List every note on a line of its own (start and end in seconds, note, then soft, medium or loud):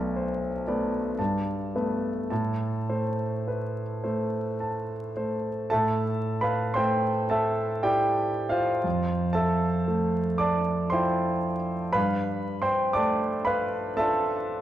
0.00 1.21 B1 medium
0.00 0.62 A3 soft
0.00 0.63 B3 soft
0.00 0.46 D5 soft
0.00 1.19 A5 medium
0.16 0.67 C5 soft
0.67 1.16 A3 soft
0.67 1.16 B3 soft
0.67 1.20 D5 soft
1.19 1.72 G2 soft
1.19 2.07 A5 soft
1.75 2.27 A3 soft
1.75 2.27 B3 soft
1.75 2.31 B4 soft
2.30 2.87 A2 soft
2.30 3.23 A5 soft
2.89 4.00 A3 soft
2.89 3.81 C5 soft
3.48 4.04 B4 soft
4.04 5.11 A3 soft
4.04 4.92 C5 soft
4.60 5.49 A5 soft
5.17 5.67 A3 soft
5.17 5.71 C5 soft
5.70 8.82 A2 soft
5.70 6.38 A4 medium
5.70 6.38 E5 medium
5.70 6.41 A5 medium
6.41 6.75 B4 soft
6.41 6.75 F5 soft
6.41 6.77 B5 medium
6.74 8.44 A3 soft
6.74 7.25 C5 medium
6.74 7.26 G5 medium
6.74 7.28 C6 medium
7.30 7.79 A4 medium
7.30 7.79 E5 medium
7.30 7.82 A5 medium
7.83 8.82 E4 soft
7.83 8.47 G4 medium
7.83 8.47 D5 medium
7.83 8.51 G5 medium
8.49 9.32 F4 medium
8.49 9.33 C5 medium
8.49 9.36 F5 medium
8.84 11.92 F2 soft
9.33 10.36 A4 medium
9.33 10.35 E5 medium
9.33 10.38 A5 medium
9.88 11.55 A3 soft
10.38 10.89 D5 medium
10.38 10.89 A5 medium
10.38 10.92 D6 medium
10.90 11.92 E4 soft
10.90 11.93 F4 soft
10.90 11.92 C5 soft
10.90 11.92 G5 soft
10.90 11.95 C6 medium
11.93 14.61 G2 soft
11.93 12.58 B4 medium
11.93 12.58 F5 medium
11.93 12.61 B5 medium
12.62 12.94 C5 medium
12.62 12.94 G5 medium
12.62 12.96 C6 medium
12.93 14.60 A3 soft
12.93 13.43 D5 medium
12.93 13.43 A5 medium
12.93 13.46 D6 medium
13.45 13.95 B4 medium
13.45 13.94 F5 medium
13.45 13.97 B5 medium
13.97 14.61 D4 soft
13.97 14.61 F4 soft
13.97 14.61 A4 medium
13.97 14.61 E5 medium
13.97 14.61 A5 medium